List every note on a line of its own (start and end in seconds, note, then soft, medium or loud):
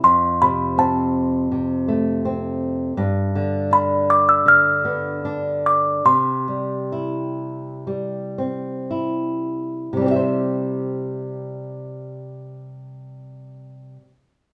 0.04 2.92 F2 medium
0.04 0.42 C6 medium
0.42 1.50 C3 soft
0.42 0.79 B5 medium
0.78 2.20 C4 medium
0.78 2.57 A5 medium
1.52 2.93 C3 soft
1.88 2.94 A3 soft
2.25 2.95 C4 soft
2.97 6.01 G2 medium
3.35 4.44 D3 soft
3.71 5.20 D4 medium
3.71 4.10 B5 medium
4.10 4.18 D6 medium
4.29 4.47 E6 medium
4.46 6.01 D3 soft
4.46 5.69 F6 medium
4.85 6.02 B3 soft
5.25 6.03 D4 medium
5.66 5.84 D6 medium
6.05 9.92 C3 medium
6.05 8.86 C6 medium
6.48 7.86 G3 soft
6.92 8.86 E4 soft
7.87 9.96 G3 soft
8.38 10.00 C4 soft
8.91 10.01 E4 soft
9.93 13.97 C3 soft
9.93 14.01 G3 soft
10.02 14.06 C4 soft
10.06 10.11 G4 soft
10.11 14.15 E5 soft
10.16 14.20 C5 soft